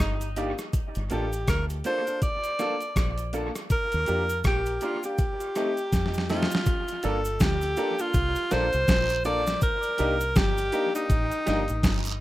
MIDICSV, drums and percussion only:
0, 0, Header, 1, 2, 480
1, 0, Start_track
1, 0, Key_signature, -2, "minor"
1, 0, Tempo, 739827
1, 476, Time_signature, 4, 2, 24, 8
1, 7919, End_track
2, 0, Start_track
2, 0, Title_t, "Drums"
2, 0, Note_on_c, 9, 37, 108
2, 0, Note_on_c, 9, 42, 76
2, 0, Note_on_c, 9, 69, 70
2, 62, Note_off_c, 9, 42, 0
2, 63, Note_off_c, 9, 69, 0
2, 65, Note_off_c, 9, 37, 0
2, 136, Note_on_c, 9, 42, 60
2, 137, Note_on_c, 9, 69, 59
2, 201, Note_off_c, 9, 42, 0
2, 202, Note_off_c, 9, 69, 0
2, 236, Note_on_c, 9, 42, 75
2, 238, Note_on_c, 9, 69, 49
2, 301, Note_off_c, 9, 42, 0
2, 303, Note_off_c, 9, 69, 0
2, 379, Note_on_c, 9, 69, 72
2, 381, Note_on_c, 9, 37, 62
2, 381, Note_on_c, 9, 42, 54
2, 444, Note_off_c, 9, 69, 0
2, 445, Note_off_c, 9, 42, 0
2, 446, Note_off_c, 9, 37, 0
2, 476, Note_on_c, 9, 36, 106
2, 476, Note_on_c, 9, 42, 85
2, 476, Note_on_c, 9, 69, 68
2, 541, Note_off_c, 9, 36, 0
2, 541, Note_off_c, 9, 42, 0
2, 541, Note_off_c, 9, 69, 0
2, 617, Note_on_c, 9, 42, 59
2, 617, Note_on_c, 9, 69, 49
2, 682, Note_off_c, 9, 42, 0
2, 682, Note_off_c, 9, 69, 0
2, 712, Note_on_c, 9, 42, 71
2, 718, Note_on_c, 9, 69, 54
2, 777, Note_off_c, 9, 42, 0
2, 783, Note_off_c, 9, 69, 0
2, 861, Note_on_c, 9, 69, 71
2, 862, Note_on_c, 9, 42, 48
2, 926, Note_off_c, 9, 69, 0
2, 927, Note_off_c, 9, 42, 0
2, 957, Note_on_c, 9, 42, 88
2, 959, Note_on_c, 9, 36, 109
2, 959, Note_on_c, 9, 69, 68
2, 961, Note_on_c, 9, 37, 116
2, 1022, Note_off_c, 9, 42, 0
2, 1023, Note_off_c, 9, 36, 0
2, 1024, Note_off_c, 9, 69, 0
2, 1026, Note_off_c, 9, 37, 0
2, 1102, Note_on_c, 9, 69, 52
2, 1104, Note_on_c, 9, 42, 56
2, 1167, Note_off_c, 9, 69, 0
2, 1169, Note_off_c, 9, 42, 0
2, 1195, Note_on_c, 9, 42, 76
2, 1199, Note_on_c, 9, 69, 47
2, 1260, Note_off_c, 9, 42, 0
2, 1264, Note_off_c, 9, 69, 0
2, 1344, Note_on_c, 9, 42, 49
2, 1344, Note_on_c, 9, 69, 71
2, 1409, Note_off_c, 9, 42, 0
2, 1409, Note_off_c, 9, 69, 0
2, 1438, Note_on_c, 9, 42, 84
2, 1440, Note_on_c, 9, 36, 108
2, 1441, Note_on_c, 9, 69, 62
2, 1503, Note_off_c, 9, 42, 0
2, 1505, Note_off_c, 9, 36, 0
2, 1505, Note_off_c, 9, 69, 0
2, 1581, Note_on_c, 9, 42, 54
2, 1584, Note_on_c, 9, 69, 51
2, 1645, Note_off_c, 9, 42, 0
2, 1648, Note_off_c, 9, 69, 0
2, 1680, Note_on_c, 9, 42, 68
2, 1683, Note_on_c, 9, 37, 70
2, 1683, Note_on_c, 9, 69, 55
2, 1745, Note_off_c, 9, 42, 0
2, 1748, Note_off_c, 9, 37, 0
2, 1748, Note_off_c, 9, 69, 0
2, 1820, Note_on_c, 9, 42, 47
2, 1825, Note_on_c, 9, 69, 57
2, 1885, Note_off_c, 9, 42, 0
2, 1890, Note_off_c, 9, 69, 0
2, 1920, Note_on_c, 9, 36, 104
2, 1923, Note_on_c, 9, 42, 75
2, 1925, Note_on_c, 9, 69, 77
2, 1926, Note_on_c, 9, 37, 108
2, 1985, Note_off_c, 9, 36, 0
2, 1988, Note_off_c, 9, 42, 0
2, 1990, Note_off_c, 9, 69, 0
2, 1991, Note_off_c, 9, 37, 0
2, 2061, Note_on_c, 9, 42, 58
2, 2065, Note_on_c, 9, 69, 59
2, 2125, Note_off_c, 9, 42, 0
2, 2130, Note_off_c, 9, 69, 0
2, 2160, Note_on_c, 9, 42, 73
2, 2165, Note_on_c, 9, 69, 46
2, 2225, Note_off_c, 9, 42, 0
2, 2229, Note_off_c, 9, 69, 0
2, 2306, Note_on_c, 9, 37, 65
2, 2306, Note_on_c, 9, 42, 58
2, 2307, Note_on_c, 9, 69, 74
2, 2371, Note_off_c, 9, 37, 0
2, 2371, Note_off_c, 9, 42, 0
2, 2372, Note_off_c, 9, 69, 0
2, 2401, Note_on_c, 9, 42, 79
2, 2401, Note_on_c, 9, 69, 68
2, 2402, Note_on_c, 9, 36, 117
2, 2466, Note_off_c, 9, 42, 0
2, 2466, Note_off_c, 9, 69, 0
2, 2467, Note_off_c, 9, 36, 0
2, 2543, Note_on_c, 9, 42, 60
2, 2545, Note_on_c, 9, 69, 50
2, 2607, Note_off_c, 9, 42, 0
2, 2610, Note_off_c, 9, 69, 0
2, 2636, Note_on_c, 9, 42, 71
2, 2642, Note_on_c, 9, 69, 54
2, 2701, Note_off_c, 9, 42, 0
2, 2707, Note_off_c, 9, 69, 0
2, 2786, Note_on_c, 9, 69, 73
2, 2787, Note_on_c, 9, 42, 47
2, 2851, Note_off_c, 9, 69, 0
2, 2852, Note_off_c, 9, 42, 0
2, 2882, Note_on_c, 9, 42, 84
2, 2882, Note_on_c, 9, 69, 71
2, 2884, Note_on_c, 9, 36, 101
2, 2887, Note_on_c, 9, 37, 116
2, 2947, Note_off_c, 9, 42, 0
2, 2947, Note_off_c, 9, 69, 0
2, 2949, Note_off_c, 9, 36, 0
2, 2952, Note_off_c, 9, 37, 0
2, 3023, Note_on_c, 9, 69, 51
2, 3029, Note_on_c, 9, 42, 61
2, 3088, Note_off_c, 9, 69, 0
2, 3093, Note_off_c, 9, 42, 0
2, 3120, Note_on_c, 9, 42, 73
2, 3121, Note_on_c, 9, 69, 44
2, 3185, Note_off_c, 9, 42, 0
2, 3185, Note_off_c, 9, 69, 0
2, 3264, Note_on_c, 9, 69, 72
2, 3268, Note_on_c, 9, 42, 49
2, 3329, Note_off_c, 9, 69, 0
2, 3333, Note_off_c, 9, 42, 0
2, 3361, Note_on_c, 9, 69, 63
2, 3364, Note_on_c, 9, 42, 86
2, 3365, Note_on_c, 9, 36, 115
2, 3426, Note_off_c, 9, 69, 0
2, 3429, Note_off_c, 9, 42, 0
2, 3430, Note_off_c, 9, 36, 0
2, 3506, Note_on_c, 9, 42, 54
2, 3506, Note_on_c, 9, 69, 51
2, 3571, Note_off_c, 9, 42, 0
2, 3571, Note_off_c, 9, 69, 0
2, 3604, Note_on_c, 9, 42, 68
2, 3605, Note_on_c, 9, 69, 53
2, 3607, Note_on_c, 9, 37, 70
2, 3669, Note_off_c, 9, 42, 0
2, 3670, Note_off_c, 9, 69, 0
2, 3672, Note_off_c, 9, 37, 0
2, 3745, Note_on_c, 9, 42, 48
2, 3748, Note_on_c, 9, 69, 56
2, 3809, Note_off_c, 9, 42, 0
2, 3813, Note_off_c, 9, 69, 0
2, 3844, Note_on_c, 9, 36, 104
2, 3845, Note_on_c, 9, 69, 77
2, 3848, Note_on_c, 9, 42, 71
2, 3850, Note_on_c, 9, 38, 56
2, 3909, Note_off_c, 9, 36, 0
2, 3910, Note_off_c, 9, 69, 0
2, 3913, Note_off_c, 9, 42, 0
2, 3915, Note_off_c, 9, 38, 0
2, 3930, Note_on_c, 9, 38, 53
2, 3982, Note_on_c, 9, 69, 54
2, 3986, Note_on_c, 9, 42, 57
2, 3995, Note_off_c, 9, 38, 0
2, 4009, Note_on_c, 9, 38, 72
2, 4047, Note_off_c, 9, 69, 0
2, 4051, Note_off_c, 9, 42, 0
2, 4074, Note_off_c, 9, 38, 0
2, 4084, Note_on_c, 9, 69, 45
2, 4085, Note_on_c, 9, 46, 72
2, 4089, Note_on_c, 9, 38, 74
2, 4149, Note_off_c, 9, 46, 0
2, 4149, Note_off_c, 9, 69, 0
2, 4154, Note_off_c, 9, 38, 0
2, 4169, Note_on_c, 9, 38, 95
2, 4225, Note_on_c, 9, 69, 75
2, 4230, Note_on_c, 9, 42, 56
2, 4234, Note_off_c, 9, 38, 0
2, 4248, Note_on_c, 9, 38, 97
2, 4290, Note_off_c, 9, 69, 0
2, 4294, Note_off_c, 9, 42, 0
2, 4313, Note_off_c, 9, 38, 0
2, 4320, Note_on_c, 9, 69, 67
2, 4324, Note_on_c, 9, 36, 116
2, 4325, Note_on_c, 9, 42, 89
2, 4385, Note_off_c, 9, 69, 0
2, 4389, Note_off_c, 9, 36, 0
2, 4390, Note_off_c, 9, 42, 0
2, 4463, Note_on_c, 9, 69, 51
2, 4467, Note_on_c, 9, 42, 62
2, 4528, Note_off_c, 9, 69, 0
2, 4532, Note_off_c, 9, 42, 0
2, 4560, Note_on_c, 9, 42, 76
2, 4561, Note_on_c, 9, 69, 57
2, 4625, Note_off_c, 9, 42, 0
2, 4625, Note_off_c, 9, 69, 0
2, 4704, Note_on_c, 9, 69, 80
2, 4709, Note_on_c, 9, 42, 52
2, 4768, Note_off_c, 9, 69, 0
2, 4774, Note_off_c, 9, 42, 0
2, 4800, Note_on_c, 9, 69, 75
2, 4802, Note_on_c, 9, 42, 91
2, 4804, Note_on_c, 9, 36, 114
2, 4807, Note_on_c, 9, 38, 127
2, 4865, Note_off_c, 9, 69, 0
2, 4867, Note_off_c, 9, 42, 0
2, 4869, Note_off_c, 9, 36, 0
2, 4872, Note_off_c, 9, 38, 0
2, 4941, Note_on_c, 9, 69, 59
2, 4950, Note_on_c, 9, 42, 67
2, 5005, Note_off_c, 9, 69, 0
2, 5015, Note_off_c, 9, 42, 0
2, 5039, Note_on_c, 9, 69, 49
2, 5041, Note_on_c, 9, 42, 81
2, 5103, Note_off_c, 9, 69, 0
2, 5106, Note_off_c, 9, 42, 0
2, 5183, Note_on_c, 9, 69, 73
2, 5188, Note_on_c, 9, 42, 53
2, 5248, Note_off_c, 9, 69, 0
2, 5252, Note_off_c, 9, 42, 0
2, 5279, Note_on_c, 9, 69, 68
2, 5283, Note_on_c, 9, 36, 125
2, 5283, Note_on_c, 9, 42, 93
2, 5344, Note_off_c, 9, 69, 0
2, 5348, Note_off_c, 9, 36, 0
2, 5348, Note_off_c, 9, 42, 0
2, 5421, Note_on_c, 9, 69, 55
2, 5425, Note_on_c, 9, 42, 57
2, 5486, Note_off_c, 9, 69, 0
2, 5489, Note_off_c, 9, 42, 0
2, 5521, Note_on_c, 9, 69, 62
2, 5522, Note_on_c, 9, 42, 71
2, 5524, Note_on_c, 9, 38, 69
2, 5586, Note_off_c, 9, 42, 0
2, 5586, Note_off_c, 9, 69, 0
2, 5589, Note_off_c, 9, 38, 0
2, 5662, Note_on_c, 9, 42, 49
2, 5664, Note_on_c, 9, 69, 60
2, 5727, Note_off_c, 9, 42, 0
2, 5728, Note_off_c, 9, 69, 0
2, 5761, Note_on_c, 9, 69, 81
2, 5761, Note_on_c, 9, 74, 74
2, 5762, Note_on_c, 9, 36, 109
2, 5765, Note_on_c, 9, 42, 82
2, 5767, Note_on_c, 9, 38, 113
2, 5826, Note_off_c, 9, 69, 0
2, 5826, Note_off_c, 9, 74, 0
2, 5827, Note_off_c, 9, 36, 0
2, 5830, Note_off_c, 9, 42, 0
2, 5832, Note_off_c, 9, 38, 0
2, 5900, Note_on_c, 9, 69, 58
2, 5902, Note_on_c, 9, 42, 62
2, 5965, Note_off_c, 9, 69, 0
2, 5967, Note_off_c, 9, 42, 0
2, 5998, Note_on_c, 9, 69, 51
2, 6003, Note_on_c, 9, 42, 75
2, 6063, Note_off_c, 9, 69, 0
2, 6068, Note_off_c, 9, 42, 0
2, 6143, Note_on_c, 9, 69, 74
2, 6147, Note_on_c, 9, 42, 63
2, 6148, Note_on_c, 9, 38, 72
2, 6208, Note_off_c, 9, 69, 0
2, 6212, Note_off_c, 9, 42, 0
2, 6213, Note_off_c, 9, 38, 0
2, 6237, Note_on_c, 9, 69, 73
2, 6242, Note_on_c, 9, 36, 116
2, 6242, Note_on_c, 9, 42, 90
2, 6302, Note_off_c, 9, 69, 0
2, 6306, Note_off_c, 9, 36, 0
2, 6307, Note_off_c, 9, 42, 0
2, 6376, Note_on_c, 9, 69, 51
2, 6382, Note_on_c, 9, 42, 60
2, 6441, Note_off_c, 9, 69, 0
2, 6447, Note_off_c, 9, 42, 0
2, 6476, Note_on_c, 9, 42, 78
2, 6478, Note_on_c, 9, 69, 55
2, 6540, Note_off_c, 9, 42, 0
2, 6543, Note_off_c, 9, 69, 0
2, 6623, Note_on_c, 9, 42, 51
2, 6623, Note_on_c, 9, 69, 82
2, 6688, Note_off_c, 9, 42, 0
2, 6688, Note_off_c, 9, 69, 0
2, 6719, Note_on_c, 9, 42, 95
2, 6719, Note_on_c, 9, 69, 77
2, 6721, Note_on_c, 9, 36, 121
2, 6723, Note_on_c, 9, 38, 127
2, 6784, Note_off_c, 9, 42, 0
2, 6784, Note_off_c, 9, 69, 0
2, 6786, Note_off_c, 9, 36, 0
2, 6788, Note_off_c, 9, 38, 0
2, 6862, Note_on_c, 9, 69, 55
2, 6867, Note_on_c, 9, 42, 69
2, 6927, Note_off_c, 9, 69, 0
2, 6932, Note_off_c, 9, 42, 0
2, 6957, Note_on_c, 9, 42, 85
2, 6960, Note_on_c, 9, 69, 50
2, 7022, Note_off_c, 9, 42, 0
2, 7025, Note_off_c, 9, 69, 0
2, 7105, Note_on_c, 9, 42, 49
2, 7105, Note_on_c, 9, 69, 78
2, 7170, Note_off_c, 9, 42, 0
2, 7170, Note_off_c, 9, 69, 0
2, 7200, Note_on_c, 9, 36, 124
2, 7200, Note_on_c, 9, 42, 94
2, 7202, Note_on_c, 9, 69, 64
2, 7265, Note_off_c, 9, 36, 0
2, 7265, Note_off_c, 9, 42, 0
2, 7266, Note_off_c, 9, 69, 0
2, 7341, Note_on_c, 9, 42, 59
2, 7342, Note_on_c, 9, 69, 57
2, 7406, Note_off_c, 9, 42, 0
2, 7407, Note_off_c, 9, 69, 0
2, 7440, Note_on_c, 9, 42, 74
2, 7441, Note_on_c, 9, 69, 60
2, 7442, Note_on_c, 9, 38, 68
2, 7504, Note_off_c, 9, 42, 0
2, 7506, Note_off_c, 9, 69, 0
2, 7507, Note_off_c, 9, 38, 0
2, 7578, Note_on_c, 9, 42, 50
2, 7583, Note_on_c, 9, 69, 62
2, 7643, Note_off_c, 9, 42, 0
2, 7648, Note_off_c, 9, 69, 0
2, 7677, Note_on_c, 9, 36, 117
2, 7680, Note_on_c, 9, 42, 80
2, 7680, Note_on_c, 9, 69, 78
2, 7680, Note_on_c, 9, 74, 81
2, 7682, Note_on_c, 9, 38, 114
2, 7742, Note_off_c, 9, 36, 0
2, 7745, Note_off_c, 9, 42, 0
2, 7745, Note_off_c, 9, 69, 0
2, 7745, Note_off_c, 9, 74, 0
2, 7747, Note_off_c, 9, 38, 0
2, 7817, Note_on_c, 9, 42, 66
2, 7820, Note_on_c, 9, 69, 62
2, 7882, Note_off_c, 9, 42, 0
2, 7885, Note_off_c, 9, 69, 0
2, 7919, End_track
0, 0, End_of_file